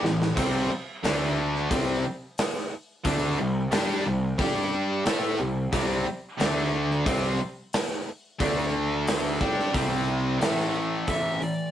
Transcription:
0.03 A1 A2 E3, snare
0.22 snare
0.36 C2 C3 G3 C4, kick, open hi-hat, crash
0.70 muted distorted electric guitar stroke, muted picked electric bass stroke
1.04 D2 D3 A3 D4, snare, open hi-hat
1.56 snare
1.70 C2 C3 G3 C4, kick, open hi-hat
2.38 snare, open hi-hat
2.56 snare
3.04 D2 D3 A3 D4, kick, open hi-hat
3.39 C2 C3 G3
3.72 G2 G3 D4 G4, snare, open hi-hat
4.05 C2 C3 G3
4.39 G2 G3 D4 G4, kick, open hi-hat
5.05 A2 A3 E4 A4, snare, open hi-hat
5.39 C2 C3 G3
5.72 C2 C3 G3 C4, kick, open hi-hat
6.07 muted picked electric bass stroke, muted distorted electric guitar stroke
6.40 D2 D3 A3 D4, snare, open hi-hat
6.91 snare
7.06 C2 C3 G3 C4, kick, open hi-hat
7.73 snare, open hi-hat
7.91 snare
8.40 D2 D3 A3 D4, kick, open hi-hat
9.07 snare, open hi-hat
9.40 G2 G3 D4 G4, kick
9.59 snare
9.73 C2 C3 G3 C4, kick, open hi-hat
10.40 A1 A2 E3 A3, snare, open hi-hat
10.59 snare
11.07 A1 A2 E3 A3 E5, kick, open hi-hat
11.41 A2 E3 D5, open hi-hat

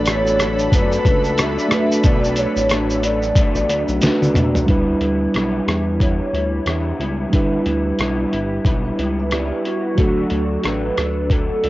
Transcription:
Already playing: A1 A3 D4 F#4 A4 B4 F#5 B5
0.06 B2 F#3 A3 D4 C#5, cross-stick, closed hi-hat, shaker
0.27 shaker
0.39 F#3 A3 D4, cross-stick, closed hi-hat, shaker
0.59 shaker
0.72 F#1 B2 F#3 A3 D4 B4, kick, closed hi-hat, shaker
0.92 shaker
1.05 C#2 F#3 A3 D4, kick, closed hi-hat, shaker
1.24 shaker
1.38 B2 F#3 A3 E5, cross-stick, closed hi-hat, shaker
1.42 D4
1.59 shaker
1.68 A3 D4 F#4, cross-stick, closed hi-hat, shaker
1.73 F#3 A3 B4
1.92 shaker
2.04 B1 B2 F#3 A3 D4 D5, kick, closed hi-hat, shaker
2.24 shaker
2.36 A3 D4 C#5, closed hi-hat, shaker
2.40 F#3
2.56 A1, shaker
2.69 B2 F#3 A3 D4, cross-stick, closed hi-hat, shaker
2.90 shaker
3.03 F#3 A3 D4 D5, closed hi-hat, shaker
3.23 shaker
3.35 B2 F#3 A3, kick, closed hi-hat, shaker
3.40 D4
3.55 A1, shaker
3.69 D2 F#3 A3 D4, closed hi-hat, shaker
3.88 B1, shaker
4.01 D2 B2 F#3 A3 D4 F#4 B4, snare, closed hi-hat, shaker
4.05 A3 D4
4.22 D2, high tom, shaker
4.34 B2 A3 D4, closed hi-hat, mid tom, shaker
4.39 F#3
4.55 floor tom, shaker
4.66 D2 D3 G3 D4 E4, kick, closed hi-hat
4.70 G3 B3 E4 B4
5.01 D2 G3 B3 E4, closed hi-hat
5.34 B1 D3 G3 B3 E4, cross-stick, closed hi-hat
5.67 E2 G3 B3 E4, cross-stick, closed hi-hat
6.00 D3 G3 B3 E4 C#5, kick, closed hi-hat
6.33 D2 G3 B3 E4, closed hi-hat
6.66 E2 D3 G3 B3 E4, cross-stick, closed hi-hat
6.99 C#2 G3 B3 E4, closed hi-hat
7.30 D2 D3 G3 D4 E4, kick, closed hi-hat
7.34 B3 E4 B4
7.66 D2 G3 B3 E4, closed hi-hat
7.99 B1 D3 G3 B3 E4, cross-stick, closed hi-hat
8.31 G1 G3 B3 E4, closed hi-hat
8.65 B1 D3 G3 B3 E4, kick, closed hi-hat
8.85 E4 B4
8.98 C#2 G3 B3 E4, closed hi-hat
9.19 B4 E5
9.31 G3 B3 E4 G4 D5, cross-stick, closed hi-hat
9.52 E4 B4
9.64 G3 B3 E4 F#4, closed hi-hat
9.95 D2 D3 F#3 A3 D4, kick, closed hi-hat
10.00 A4
10.30 D2 F#3 A3 D4, closed hi-hat
10.63 A1 D3 F#3 A3 D4 B4, cross-stick, closed hi-hat
10.96 D2 F#3 A3 D4, cross-stick, closed hi-hat
11.29 D3 F#3 A3 D4 A4, kick, closed hi-hat
11.63 C#2 F#3 A3 D4, closed hi-hat

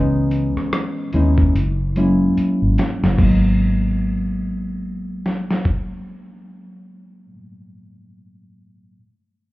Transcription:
Already playing: C#2 E3 G#3 B3 C#4 D#4
0.31 closed hi-hat
0.56 muted fingered electric bass stroke, cross-stick
0.73 cross-stick, closed hi-hat
1.13 D#2 G#3 B3 C#4 D#4 E4, closed hi-hat
1.38 kick
1.55 F#1, closed hi-hat
1.96 F#3 G#3 A#3 C#4 E4, closed hi-hat
2.37 muted fingered electric bass stroke, closed hi-hat
2.62 G#1
2.78 snare, closed hi-hat
3.03 F#1, snare
3.16 G#1 F#3 G#3, kick, crash
3.20 A#3 B3
3.24 D#4
5.26 snare
5.51 snare
5.65 kick

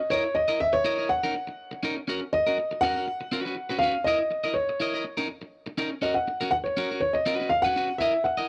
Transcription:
Already playing: D#5
0.10 E4 A#4 C#5 D#5
0.24 muted clean electric guitar stroke
0.35 D#5, muted clean electric guitar stroke
0.48 E4 A#4 D#5
0.60 E5, muted clean electric guitar stroke
0.73 C#5, muted clean electric guitar stroke
0.84 E4 A#4 D#5
0.98 E4 A#4 D#5
1.09 F#5, muted clean electric guitar stroke
1.23 C#4 D#4 A#4
1.35 muted clean electric guitar stroke
1.47 muted clean electric guitar stroke
1.71 muted clean electric guitar stroke
1.83 C#4 D#4 A#4
1.97 muted clean electric guitar stroke
2.08 C#4 F#4 A#4
2.21 muted clean electric guitar stroke
2.33 D#5, muted clean electric guitar stroke
2.47 C#4 F#4 A#4
2.58 muted clean electric guitar stroke
2.71 muted clean electric guitar stroke
2.81 C#4 F#4 A#4 F#5
2.96 C#4 F#4 A#4
3.08 muted clean electric guitar stroke
3.21 muted clean electric guitar stroke
3.32 C#4 F#4 B4
3.45 C#4 F#4 B4
3.56 muted clean electric guitar stroke
3.69 C#4 F#4 B4
3.79 C#4 F5
3.83 F#4 B4
3.95 muted clean electric guitar stroke
4.04 E4 A#4 D#5
4.19 muted clean electric guitar stroke
4.31 muted clean electric guitar stroke
4.44 E4 A#4 D#5
4.54 C#5, muted clean electric guitar stroke
4.69 muted clean electric guitar stroke
4.80 E4 A#4 D#5
4.94 E4 A#4 D#5
5.04 muted clean electric guitar stroke
5.17 C#4 D#4 A#4
5.29 muted clean electric guitar stroke
5.42 muted clean electric guitar stroke
5.66 muted clean electric guitar stroke
5.78 C#4 D#4 A#4
5.91 muted clean electric guitar stroke
6.02 C#4 F#4 A#4 D#5
6.14 F#5, muted clean electric guitar stroke
6.28 muted clean electric guitar stroke
6.41 C#4 F#4 A#4
6.51 F#5, muted clean electric guitar stroke
6.64 C#5, muted clean electric guitar stroke
6.77 C#4 F#4 A#4
6.91 C#4 F#4 A#4
7.00 C#5, muted clean electric guitar stroke
7.13 D#5, muted clean electric guitar stroke
7.26 C#4 F#4 B4
7.40 C#4 F#4 B4
7.49 F5, muted clean electric guitar stroke
7.62 F#4 B4 F#5
7.66 C#4
7.76 C#4 F#4 B4
7.90 muted clean electric guitar stroke
7.98 E4 A#4 D#5 E5
8.14 muted clean electric guitar stroke
8.24 F#5, muted clean electric guitar stroke
8.37 E4 A#4 D#5

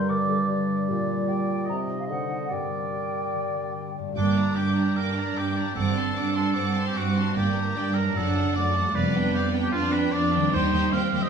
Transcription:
Already playing: G2 G3 D4 G4 D5 G5 C6
0.09 D3 A#4 D5 D6
0.28 G3 A4
0.48 G4 D5
0.69 D5
0.86 A#2 G4 D5
0.90 A#2
1.10 G3
1.26 G4 D5 G5
1.49 D5
1.66 C3 G4 D#5 A#5
1.90 D#4 C5
1.99 F5
2.07 D3 D#5 F#5
2.11 C5
2.30 D#4 A4
2.50 G2 G3 A#4 D5 G5
2.72 A#3
2.93 G4
3.13 D5
3.33 D3
3.54 A#3
3.76 G4
3.97 G2 D5
4.03 A#3
4.08 D4
4.12 G4 D6
4.16 G1 G2 A#3 D4 G5
4.37 D4 D5 A#5
4.55 G2 A#3 D4 G4 G5 D6
4.76 D4 D5 A#5
4.96 G2 A#3 A#4 G5 D6
5.15 D4 D5 A#5
5.36 G2 A#3 G4 G5 D6
5.55 G2 D4 D5 A#5
5.62 C4
5.67 D4
5.72 F#4 A4 F#5
5.76 G1 G2 C4 D6
5.95 D4 A5 C6
6.15 G2 C4 D4 F#5 D6
6.35 D4 A4 A5 C6
6.53 G2 C4 F#5 D6
6.75 D4 A5 C6
6.87 G4
6.95 G2 C4 F#4 F#5 D6
7.14 G2 D4 A5 C6
7.22 A#3
7.27 D4
7.32 G2 A#3 G4 D5 G5
7.36 G1 A#3 G4
7.55 D4 A#4 A#5
7.74 G2 A#3 D4 D5 G5
7.94 F#2 D4 A#4 A#5
8.02 A3
8.07 D4
8.11 F#2 F#4 D5
8.15 F#1 D4 A4 F#5
8.34 D4 F#5 A5
8.54 F#2 A3 F#4 D5 F#5
8.74 F2 D4 F#5 A5
8.81 G3
8.85 G4
8.90 D5
8.94 F1 F2 B3 B4 D5 F5
9.15 D4 B4 G5
9.33 F2 B3 G4 D5 F5
9.54 D4 B4 G5
9.63 G4
9.72 F2 B3 D4 F4 D5 F5
9.92 D4 B4 G5
10.12 F2 B3 D4 D5 F5
10.33 D#3 D4 B4 G5
10.39 G3
10.44 G4
10.48 D#2 D#4 C5
10.52 D#2 G4 C5 G5
10.72 D#2 G4 C5 G5
10.91 D#2 C4 G4 C5 F5 G5
11.12 D#2 D3 G4 C5 G5
11.18 F#3 D#5
11.22 D4

